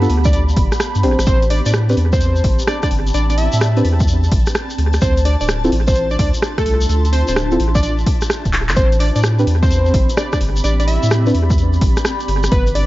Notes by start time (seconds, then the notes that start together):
Already playing: B3 G4 F5 A5 B5
0.02 B3 D4 F4 A4, closed hi-hat, shekere
0.10 D2, open hi-hat
0.24 D5, kick, shekere
0.33 D5, closed hi-hat, shekere
0.49 shekere
0.56 G1, kick, open hi-hat
0.72 cross-stick, closed hi-hat, shekere
0.80 cross-stick, shekere
0.95 G2, closed hi-hat, shekere
1.03 A1 C4 D4 G4 C5, open hi-hat
1.19 A1, cross-stick, closed hi-hat, shekere
1.25 A1 C5 D5 A5, kick, closed hi-hat, shekere
1.42 closed hi-hat, shekere
1.50 D5, open hi-hat
1.66 A2 D5, closed hi-hat, shekere
1.74 cross-stick
1.89 C4 D4 G4 B4, closed hi-hat, shekere
1.97 E2 B5, open hi-hat
2.13 C5, kick, shekere
2.20 closed hi-hat, shekere
2.36 shekere
2.44 A1, kick, open hi-hat
2.59 closed hi-hat, shekere
2.67 D5, cross-stick, shekere
2.83 D5, kick, cross-stick, closed hi-hat, shekere
2.91 G1, open hi-hat
3.06 closed hi-hat, shekere
3.14 A1 D5, closed hi-hat, shekere
3.30 D5, closed hi-hat, shekere
3.38 E5, open hi-hat
3.52 A2, closed hi-hat, shekere
3.61 cross-stick, shekere
3.77 C4 D4 G4 B4, closed hi-hat, shekere
3.85 E2, open hi-hat
4.00 kick, shekere
4.08 closed hi-hat, shekere
4.23 shekere
4.32 A1, kick, open hi-hat
4.46 cross-stick, closed hi-hat, shekere
4.54 cross-stick, shekere
4.70 closed hi-hat, shekere
4.78 D2 D4, open hi-hat
4.93 F4, cross-stick, closed hi-hat, shekere
5.02 D2 C5, kick, closed hi-hat, shekere
5.17 closed hi-hat, shekere
5.25 D5 C6, open hi-hat
5.34 E5
5.41 D1 D5, closed hi-hat, shekere
5.48 cross-stick, shekere
5.64 C4 E4 F4 A4, closed hi-hat, shekere
5.72 A1, open hi-hat
5.87 C5, kick, shekere
5.94 closed hi-hat, shekere
6.11 D5, shekere
6.19 D2 D5, kick, open hi-hat
6.34 closed hi-hat, shekere
6.42 cross-stick, shekere
6.58 A4, kick, cross-stick, closed hi-hat, shekere
6.66 C2, open hi-hat
6.81 closed hi-hat, shekere
6.89 D2, closed hi-hat, shekere
7.05 closed hi-hat, shekere
7.13 C5, open hi-hat
7.28 D1 C5, closed hi-hat, shekere
7.36 cross-stick, shekere
7.51 C4 E4 F4 A4, closed hi-hat, shekere
7.60 A1, open hi-hat
7.75 D5, kick, shekere
7.83 D5, closed hi-hat, shekere
7.98 shekere
8.06 kick, open hi-hat
8.21 cross-stick, closed hi-hat, shekere
8.30 cross-stick, shekere
8.45 D1, kick, closed hi-hat, shekere
8.53 clap, open hi-hat
8.69 A1, clap, closed hi-hat, shekere
8.76 A1 C4 C5 B5, kick, closed hi-hat, shekere
8.85 G4
8.92 closed hi-hat, shekere
9.00 D5, open hi-hat
9.16 A2 D5, closed hi-hat, shekere
9.23 cross-stick, shekere
9.39 C4 D4 G4 B4 B5, closed hi-hat, shekere
9.43 D5
9.47 E2, open hi-hat
9.62 C5, kick, shekere
9.71 closed hi-hat, shekere
9.86 shekere
9.94 A1, kick, open hi-hat
10.10 closed hi-hat, shekere
10.17 D5, cross-stick, shekere
10.33 D5, kick, cross-stick, closed hi-hat, shekere
10.41 G1, open hi-hat
10.56 closed hi-hat, shekere
10.64 A1 D5, closed hi-hat, shekere
10.80 D5, closed hi-hat, shekere
10.88 E5, open hi-hat
11.03 A2, closed hi-hat, shekere
11.11 cross-stick, shekere
11.27 C4 D4 G4 B4, closed hi-hat, shekere
11.35 E2, open hi-hat
11.50 kick, shekere
11.58 closed hi-hat, shekere
11.73 shekere
11.81 A1, kick, open hi-hat
11.97 cross-stick, closed hi-hat, shekere
12.05 cross-stick, shekere
12.20 closed hi-hat, shekere
12.28 G1 B3, open hi-hat
12.43 F5, cross-stick, closed hi-hat, shekere
12.52 G1 B4, kick, closed hi-hat, shekere
12.67 closed hi-hat, shekere
12.75 D5, open hi-hat